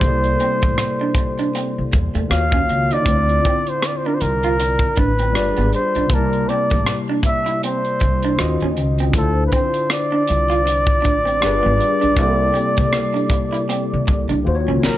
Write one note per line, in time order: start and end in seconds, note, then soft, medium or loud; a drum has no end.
0.00 0.34 C2 medium
0.00 2.24 C3 medium
0.00 2.24 G3 medium
0.00 2.26 A#3 medium
0.00 2.26 E4 medium
0.00 1.87 C5 medium
0.00 kick loud
0.00 closed hi-hat medium
0.05 2.27 A4 medium
0.05 2.28 D5 medium
0.24 closed hi-hat soft
0.40 0.53 C4 medium
0.40 closed hi-hat medium
0.62 0.76 A1 medium
0.62 kick medium
0.62 closed hi-hat soft
0.78 cross-stick medium
0.78 closed hi-hat medium
1.01 1.10 D4 medium
1.15 muted clean electric guitar stroke soft
1.15 kick medium
1.15 closed hi-hat medium
1.39 1.48 D4 medium
1.39 closed hi-hat soft
1.55 1.68 C4 medium
1.55 cross-stick soft
1.55 closed hi-hat medium
1.78 1.91 C2 medium
1.92 2.12 E2 medium
1.92 muted clean electric guitar stroke soft
1.92 kick medium
1.92 cross-stick soft
1.92 closed hi-hat medium
2.15 2.28 E2 medium
2.15 2.24 A3 medium
2.15 closed hi-hat soft
2.28 2.62 D#2 medium
2.28 3.05 D#3 medium
2.28 3.05 A#3 medium
2.28 3.06 F4 medium
2.28 3.06 F#4 medium
2.28 3.07 C#5 medium
2.28 2.95 F5 medium
2.28 cross-stick loud
2.28 closed hi-hat medium
2.52 2.62 C#4 medium
2.52 kick medium
2.69 2.87 C#2 medium
2.69 muted clean electric guitar stroke soft
2.69 closed hi-hat medium
2.91 3.01 D#4 medium
2.91 3.71 D5 loud
2.91 closed hi-hat soft
3.02 5.28 D3 medium
3.02 5.28 C4 soft
3.06 3.38 D2 medium
3.06 5.30 E4 medium
3.06 5.30 F4 medium
3.06 kick loud
3.06 closed hi-hat medium
3.10 3.16 C#5 soft
3.29 closed hi-hat soft
3.45 3.59 C4 medium
3.45 kick medium
3.45 closed hi-hat medium
3.67 3.88 C5 medium
3.67 closed hi-hat soft
3.83 cross-stick loud
3.83 closed hi-hat medium
3.87 3.99 D5 medium
3.97 4.08 C5 medium
4.06 4.15 D4 medium
4.06 4.16 A#4 medium
4.15 4.23 C5 medium
4.21 4.84 C2 medium
4.21 5.00 A#4 medium
4.21 muted clean electric guitar stroke soft
4.21 closed hi-hat medium
4.44 4.53 F4 medium
4.44 closed hi-hat soft
4.60 muted clean electric guitar stroke soft
4.60 cross-stick soft
4.60 closed hi-hat medium
4.79 kick medium
4.96 5.36 A1 medium
4.96 5.10 D4 medium
4.96 5.73 B4 medium
4.96 kick medium
4.96 closed hi-hat medium
5.19 5.28 C4 medium
5.19 closed hi-hat soft
5.33 5.54 G1 medium
5.33 6.07 G3 medium
5.33 6.09 D4 medium
5.33 6.10 F4 soft
5.33 6.10 G#4 medium
5.33 6.11 D5 medium
5.33 cross-stick loud
5.33 closed hi-hat medium
5.57 5.70 G#1 medium
5.57 5.66 B3 medium
5.57 closed hi-hat soft
5.73 6.15 C5 medium
5.73 muted clean electric guitar stroke soft
5.73 closed hi-hat medium
5.95 6.08 B1 medium
5.95 6.05 D4 medium
5.95 closed hi-hat soft
6.06 8.32 C3 medium
6.06 8.32 G3 medium
6.06 8.33 A#3 medium
6.06 kick loud
6.11 6.42 C2 medium
6.11 6.18 D#4 soft
6.11 6.51 A#4 medium
6.11 8.35 A5 medium
6.11 closed hi-hat medium
6.15 8.38 E4 medium
6.15 8.36 D5 medium
6.33 closed hi-hat soft
6.49 6.63 C4 medium
6.49 6.99 D5 medium
6.49 closed hi-hat medium
6.70 6.85 A1 medium
6.70 kick medium
6.70 closed hi-hat soft
6.86 cross-stick loud
6.86 closed hi-hat medium
7.09 7.18 D4 medium
7.23 7.60 E5 medium
7.23 muted clean electric guitar stroke soft
7.23 kick medium
7.23 closed hi-hat medium
7.46 7.55 E4 medium
7.46 closed hi-hat soft
7.63 7.76 C4 medium
7.63 8.73 C5 medium
7.63 closed hi-hat medium
7.85 closed hi-hat soft
8.00 8.33 C2 medium
8.00 muted clean electric guitar stroke soft
8.00 kick medium
8.00 cross-stick soft
8.00 closed hi-hat medium
8.23 8.33 D4 medium
8.23 closed hi-hat soft
8.36 9.12 D#3 medium
8.36 9.13 C#4 medium
8.36 9.14 F4 medium
8.36 9.14 F#4 medium
8.36 9.14 D#5 medium
8.36 cross-stick loud
8.36 closed hi-hat medium
8.40 8.58 D#2 medium
8.60 8.77 D#2 medium
8.60 8.71 C#4 medium
8.60 closed hi-hat soft
8.77 9.08 C#2 medium
8.77 muted clean electric guitar stroke soft
8.77 closed hi-hat medium
8.98 9.09 C4 medium
8.98 closed hi-hat soft
9.10 11.35 D3 medium
9.10 11.36 D4 medium
9.10 11.37 E4 medium
9.10 kick loud
9.15 9.46 D2 medium
9.15 11.38 F4 medium
9.15 9.45 A4 medium
9.15 11.40 C5 medium
9.15 closed hi-hat medium
9.47 9.55 B4 medium
9.52 9.66 C4 medium
9.52 9.90 C5 medium
9.52 kick medium
9.52 closed hi-hat medium
9.74 closed hi-hat soft
9.90 14.43 D5 loud
9.90 cross-stick loud
9.90 closed hi-hat medium
10.12 10.21 D4 medium
10.28 11.06 C2 medium
10.28 muted clean electric guitar stroke soft
10.28 closed hi-hat medium
10.50 10.59 F4 medium
10.50 closed hi-hat soft
10.66 muted clean electric guitar stroke soft
10.66 cross-stick soft
10.66 closed hi-hat medium
10.87 kick medium
11.02 11.15 D4 medium
11.02 kick medium
11.02 cross-stick soft
11.02 closed hi-hat medium
11.06 11.44 A1 medium
11.25 11.35 C4 medium
11.25 closed hi-hat soft
11.41 11.61 G1 medium
11.41 12.14 G3 medium
11.41 12.17 D4 medium
11.41 12.18 F4 medium
11.41 12.18 G#4 medium
11.41 cross-stick loud
11.41 closed hi-hat medium
11.45 12.19 B4 medium
11.63 11.78 G#1 medium
11.63 11.72 B3 medium
11.79 muted clean electric guitar stroke soft
11.79 closed hi-hat medium
12.01 12.18 B1 medium
12.01 12.10 D4 medium
12.01 closed hi-hat soft
12.14 12.49 C2 medium
12.14 14.40 C3 medium
12.14 14.40 G3 medium
12.14 14.41 A#3 medium
12.14 kick loud
12.14 closed hi-hat medium
12.19 14.42 E4 medium
12.19 14.43 A4 medium
12.19 14.44 D5 medium
12.54 12.67 C4 medium
12.54 closed hi-hat medium
12.77 12.91 C2 medium
12.77 kick medium
12.77 closed hi-hat soft
12.93 cross-stick loud
12.93 closed hi-hat medium
13.14 13.24 D4 medium
13.14 closed hi-hat soft
13.30 muted clean electric guitar stroke soft
13.30 kick medium
13.30 closed hi-hat medium
13.53 13.62 E4 medium
13.53 closed hi-hat soft
13.69 13.82 C4 medium
13.69 cross-stick soft
13.69 closed hi-hat medium
13.93 14.06 C3 medium
14.07 14.27 C2 medium
14.07 muted clean electric guitar stroke soft
14.07 kick medium
14.07 closed hi-hat medium
14.29 14.43 C2 medium
14.29 14.38 D4 medium
14.29 closed hi-hat soft
14.44 14.65 D#2 medium
14.44 14.98 D#3 medium
14.44 14.98 A#3 medium
14.44 14.98 F4 medium
14.44 14.98 F#4 medium
14.48 14.54 C5 medium
14.55 14.98 C#5 medium
14.68 14.81 C#2 medium
14.68 14.77 C#4 medium
14.83 14.98 B1 medium
14.83 14.98 A#4 medium
14.83 muted clean electric guitar stroke soft
14.83 snare medium